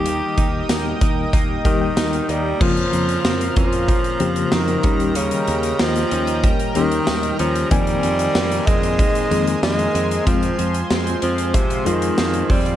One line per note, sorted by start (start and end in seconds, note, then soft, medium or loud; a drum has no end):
0.00 0.20 D#2 medium
0.00 0.82 D#3 medium
0.00 0.82 G3 medium
0.00 0.82 A#3 medium
0.00 0.66 G4 loud
0.00 0.85 G4 medium
0.00 2.58 A#4 medium
0.00 2.58 D#5 medium
0.00 2.58 G5 medium
0.00 2.58 D#6 medium
0.06 2.61 D#3 medium
0.06 closed hi-hat medium
0.38 0.61 D#2 loud
0.38 1.00 D#4 medium
0.38 kick medium
0.38 closed hi-hat medium
0.69 0.92 D#2 loud
0.69 1.33 A#3 medium
0.69 snare loud
0.69 closed hi-hat medium
0.69 tambourine medium
1.01 1.24 D#2 medium
1.01 1.96 D#4 medium
1.01 kick loud
1.01 closed hi-hat medium
1.33 1.56 D#2 loud
1.33 2.29 A#3 medium
1.33 kick loud
1.33 closed hi-hat medium
1.64 1.88 D#2 loud
1.64 2.46 D#3 medium
1.64 2.32 D#3 loud
1.64 2.46 G3 medium
1.64 2.46 A#3 medium
1.64 2.67 G4 medium
1.64 2.46 G4 medium
1.64 1.80 D#5 medium
1.64 kick loud
1.64 closed hi-hat medium
1.81 1.96 G5 medium
1.97 2.20 D#2 loud
1.97 2.61 D#4 medium
1.97 2.57 A#5 medium
1.97 snare loud
1.97 closed hi-hat medium
1.97 tambourine medium
2.13 closed hi-hat medium
2.29 2.52 D#2 loud
2.29 2.63 G3 medium
2.29 3.24 A#3 medium
2.29 closed hi-hat medium
2.60 2.84 F2 loud
2.60 3.69 C#3 medium
2.60 3.69 F3 medium
2.60 2.92 F3 medium
2.60 3.56 F3 loud
2.60 3.69 A#3 medium
2.60 3.56 C#4 medium
2.60 3.69 F4 medium
2.60 10.23 A#4 medium
2.60 3.69 C5 medium
2.60 4.82 F5 medium
2.60 7.67 A#5 loud
2.60 4.82 C6 medium
2.60 kick loud
2.60 crash loud
2.77 closed hi-hat medium
2.93 3.16 F2 loud
2.93 3.87 F3 medium
2.93 closed hi-hat medium
3.09 closed hi-hat medium
3.25 3.48 F2 loud
3.25 4.19 C4 medium
3.25 snare loud
3.25 tambourine medium
3.41 closed hi-hat medium
3.56 3.91 F2 medium
3.56 4.54 F3 loud
3.56 5.16 C#4 medium
3.56 kick loud
3.56 closed hi-hat medium
3.73 closed hi-hat medium
3.88 4.51 F3 medium
3.88 kick loud
3.88 closed hi-hat medium
4.04 closed hi-hat medium
4.19 4.43 F2 loud
4.19 4.84 C#3 medium
4.19 4.84 F3 medium
4.19 4.83 A#3 medium
4.19 4.91 C4 medium
4.19 4.84 G4 medium
4.19 4.84 C5 medium
4.19 closed hi-hat medium
4.36 closed hi-hat medium
4.52 4.75 F2 loud
4.52 5.18 D#3 loud
4.52 4.84 F3 medium
4.52 snare loud
4.52 tambourine medium
4.68 closed hi-hat medium
4.83 5.30 D#2 medium
4.83 5.92 D#3 medium
4.83 5.92 G3 medium
4.83 5.15 G3 medium
4.83 5.93 A#3 medium
4.83 5.93 C#4 medium
4.83 5.93 G4 medium
4.83 7.68 D#5 medium
4.83 7.68 G5 medium
4.83 kick loud
4.83 closed hi-hat medium
5.00 closed hi-hat medium
5.15 5.82 C#3 loud
5.15 5.47 G3 medium
5.15 6.11 C#4 medium
5.15 closed hi-hat loud
5.31 closed hi-hat medium
5.47 5.71 D#2 loud
5.47 6.42 G3 medium
5.47 closed hi-hat medium
5.63 closed hi-hat medium
5.79 6.03 D#2 loud
5.79 6.49 F3 loud
5.79 6.75 A#3 medium
5.79 snare loud
5.79 tambourine medium
5.96 closed hi-hat medium
6.11 6.46 D#2 loud
6.11 7.38 C#4 medium
6.11 closed hi-hat medium
6.27 closed hi-hat medium
6.44 7.06 G3 medium
6.44 kick loud
6.44 closed hi-hat medium
6.59 closed hi-hat medium
6.75 6.99 D#2 medium
6.75 7.57 D#3 medium
6.75 7.36 D#3 loud
6.75 7.57 G3 medium
6.75 8.35 A#3 medium
6.75 7.57 A#3 medium
6.75 7.57 C#4 medium
6.75 7.57 G4 medium
6.75 closed hi-hat medium
6.91 closed hi-hat medium
7.07 7.31 D#2 loud
7.07 7.71 G3 medium
7.07 snare loud
7.07 tambourine medium
7.23 closed hi-hat medium
7.39 7.63 D#2 loud
7.39 7.69 F3 loud
7.39 7.71 C#4 medium
7.39 closed hi-hat medium
7.55 closed hi-hat medium
7.71 7.94 F2 loud
7.71 8.79 D#3 medium
7.71 8.02 D#3 medium
7.71 8.69 G3 loud
7.71 8.80 A#3 medium
7.71 8.80 C4 medium
7.71 8.67 C4 medium
7.71 10.24 D#5 medium
7.71 12.76 G#5 medium
7.71 8.80 G#5 medium
7.71 12.76 C6 medium
7.71 kick loud
7.71 closed hi-hat loud
7.87 closed hi-hat medium
8.03 8.26 F2 loud
8.03 8.98 D#3 medium
8.03 closed hi-hat medium
8.19 closed hi-hat medium
8.35 8.58 F2 loud
8.35 9.30 A#3 medium
8.35 snare loud
8.35 tambourine medium
8.52 closed hi-hat medium
8.67 9.02 F2 medium
8.67 9.63 G#3 loud
8.67 9.94 C4 medium
8.67 kick loud
8.67 closed hi-hat medium
8.83 closed hi-hat medium
8.99 9.61 D#3 medium
8.99 kick loud
8.99 closed hi-hat medium
9.15 closed hi-hat medium
9.30 9.54 F2 loud
9.30 10.12 D#3 medium
9.30 10.12 G#3 medium
9.30 10.12 A#3 medium
9.30 10.33 A#3 medium
9.30 10.12 C4 medium
9.30 10.12 G#4 medium
9.30 closed hi-hat medium
9.47 closed hi-hat medium
9.63 9.86 F2 loud
9.63 10.26 D#3 medium
9.63 10.23 G#3 loud
9.63 snare loud
9.63 tambourine medium
9.79 closed hi-hat medium
9.94 10.18 F2 loud
9.94 10.27 C4 medium
9.94 closed hi-hat medium
10.11 closed hi-hat medium
10.25 10.50 F2 loud
10.25 10.58 F3 medium
10.25 10.87 F3 medium
10.25 11.34 G#3 medium
10.25 11.35 C4 medium
10.25 11.21 C4 medium
10.25 11.35 F4 medium
10.25 12.76 F4 medium
10.25 12.76 C5 medium
10.25 kick loud
10.25 closed hi-hat loud
10.43 closed hi-hat medium
10.58 10.82 F2 loud
10.58 11.54 F3 medium
10.58 closed hi-hat medium
10.74 closed hi-hat medium
10.90 11.14 F2 medium
10.90 11.85 G#3 medium
10.90 snare loud
10.90 tambourine medium
11.07 closed hi-hat medium
11.22 11.57 F2 medium
11.22 11.57 F3 medium
11.22 12.49 C4 medium
11.22 closed hi-hat medium
11.38 closed hi-hat medium
11.54 11.88 C3 medium
11.54 12.18 F3 medium
11.54 kick loud
11.54 closed hi-hat medium
11.70 closed hi-hat medium
11.85 12.10 F2 loud
11.85 12.52 D#3 medium
11.85 12.67 G#3 medium
11.85 12.76 G#3 medium
11.85 12.67 C4 medium
11.85 12.68 F4 medium
11.85 closed hi-hat medium
12.02 closed hi-hat medium
12.18 12.41 F2 loud
12.18 12.76 F3 medium
12.18 snare loud
12.18 tambourine medium
12.34 closed hi-hat medium
12.50 12.73 F2 medium
12.50 12.76 G3 medium
12.50 12.76 C4 medium
12.50 kick medium
12.50 open hi-hat medium
12.66 closed hi-hat medium